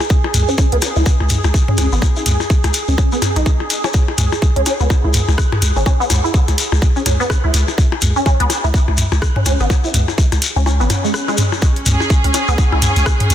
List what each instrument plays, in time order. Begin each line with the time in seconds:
Already playing: synth texture G#4
0.00 percussion blips, shekere
0.09 kick, shekere
0.24 percussion blips
0.34 sub bass C#2, closed hi-hat, mid tom, shekere
0.48 synth arpeggio sound C#4, shekere
0.58 synth arpeggio sound C#4, kick, percussion blips, shekere
0.72 sub bass C#2, synth arpeggio sound B3, closed hi-hat
0.82 closed hi-hat, percussion blips, shekere
0.96 sub bass C#2, synth arpeggio sound E4, shekere
1.06 kick, shekere
1.20 sub bass C#2, percussion blips
1.29 closed hi-hat, mid tom, shekere
1.44 sub bass C#2, percussion blips, shekere
1.54 kick, shekere
1.68 synth arpeggio sound C#4, mid tom
1.78 sub bass C#2, synth arpeggio sound C#4, closed hi-hat, percussion blips, shekere
1.92 sub bass G#1, synth arpeggio sound B3, shekere
2.02 kick, percussion blips, shekere
2.16 synth arpeggio sound E4, shekere
2.26 sub bass C#2, closed hi-hat, mid tom, shekere
2.40 percussion blips, shekere
2.50 kick, shekere
2.64 sub bass C#2, closed hi-hat, percussion blips, shekere
2.74 closed hi-hat, shekere
2.88 sub bass C#2, synth arpeggio sound C#4, shekere
2.98 synth arpeggio sound C#4, kick, percussion blips, shekere
3.12 synth arpeggio sound B3, shekere
3.22 closed hi-hat, mid tom, percussion blips, shekere
3.36 sub bass B1, synth arpeggio sound D#4, closed hi-hat, shekere
3.46 kick, shekere
3.60 percussion blips
3.70 closed hi-hat, shekere
3.84 synth arpeggio sound C#4, percussion blips, shekere
3.93 kick, shekere
4.08 percussion blips
4.18 sub bass C#2, closed hi-hat, mid tom, shekere
4.32 percussion blips, shekere
4.42 kick, shekere
4.56 sub bass C#2, synth arpeggio sound C#4, closed hi-hat
4.66 synth arpeggio sound C#4, closed hi-hat, percussion blips, shekere
4.80 sub bass C#2, synth arpeggio sound B3, shekere
4.90 kick, percussion blips, shekere
5.04 sub bass C#2, synth arpeggio sound E4
5.14 closed hi-hat, mid tom, shekere
5.28 sub bass C#2, percussion blips, shekere
5.38 kick, cross-stick, shekere
5.52 mid tom, percussion blips
5.62 sub bass C#2, closed hi-hat, shekere
5.76 sub bass G#1, synth arpeggio sound C#4, shekere
5.86 synth arpeggio sound C#4, kick, percussion blips, shekere
6.00 synth arpeggio sound B3, shekere
6.10 sub bass C#2, closed hi-hat, mid tom, percussion blips, shekere
6.24 synth arpeggio sound E4, shekere
6.34 kick, shekere
6.48 sub bass C#2, closed hi-hat, percussion blips, shekere
6.58 closed hi-hat, shekere
6.72 sub bass C#2, percussion blips, shekere
6.82 kick, shekere
6.96 synth arpeggio sound C#4, shekere
7.06 sub bass C#2, synth arpeggio sound C#4, closed hi-hat, mid tom, percussion blips, shekere
7.20 synth arpeggio sound B3, shekere
7.30 kick, cross-stick, percussion blips, shekere
7.44 sub bass C#2, synth arpeggio sound E4
7.54 sub bass C#2, closed hi-hat, shekere
7.68 percussion blips, shekere
7.78 kick, shekere
7.92 percussion blips
8.01 sub bass C#2, closed hi-hat, mid tom, shekere
8.16 synth arpeggio sound C#4, shekere
8.26 synth arpeggio sound C#4, kick, percussion blips, shekere
8.40 sub bass C#2, synth arpeggio sound B3, closed hi-hat
8.50 closed hi-hat, percussion blips, shekere
8.64 sub bass C#2, synth arpeggio sound E4, shekere
8.74 kick, shekere
8.88 sub bass C#2, percussion blips
8.97 closed hi-hat, mid tom, shekere
9.12 sub bass C#2, percussion blips, shekere
9.22 kick, cross-stick, shekere
9.36 synth arpeggio sound C#4, mid tom
9.46 sub bass C#2, synth arpeggio sound C#4, closed hi-hat, percussion blips, shekere
9.60 sub bass G#1, synth arpeggio sound B3, shekere
9.70 kick, percussion blips, shekere
9.84 synth arpeggio sound E4, shekere
9.94 sub bass C#2, closed hi-hat, mid tom, shekere
10.08 percussion blips, shekere
10.18 kick, shekere
10.32 sub bass C#2, closed hi-hat, percussion blips, shekere
10.42 closed hi-hat, shekere
10.56 sub bass C#2, synth arpeggio sound C#4, shekere
10.66 synth arpeggio sound C#4, swell, percussion blips, shekere
10.80 sub bass G#1, synth arpeggio sound B3, shekere
10.90 closed hi-hat, mid tom, percussion blips, shekere
11.04 synth arpeggio sound G#3, shekere
11.14 cross-stick, shekere
11.28 synth arpeggio sound G#3, percussion blips, shekere
11.37 closed hi-hat, mid tom, shekere
11.52 percussion blips, shekere
11.62 string section C#4, kick, percussion blips, shekere
11.76 closed hi-hat
11.86 sub bass C#2, closed hi-hat, mid tom, shekere
11.92 string section G#4
12.00 percussion blips, shekere
12.10 kick, shekere
12.24 sub bass C#2, synth arpeggio sound C#4, closed hi-hat
12.33 synth arpeggio sound C#4, string section G#5, closed hi-hat, percussion blips, shekere
12.48 sub bass C#2, synth arpeggio sound B3, shekere
12.58 kick, shekere
12.72 sub bass C#2, synth arpeggio sound E4, percussion blips
12.82 closed hi-hat, mid tom, shekere
12.96 sub bass C#2, closed hi-hat, shekere
13.06 kick, cross-stick, percussion blips, shekere
13.20 closed hi-hat, mid tom
13.30 sub bass C#2, closed hi-hat, shekere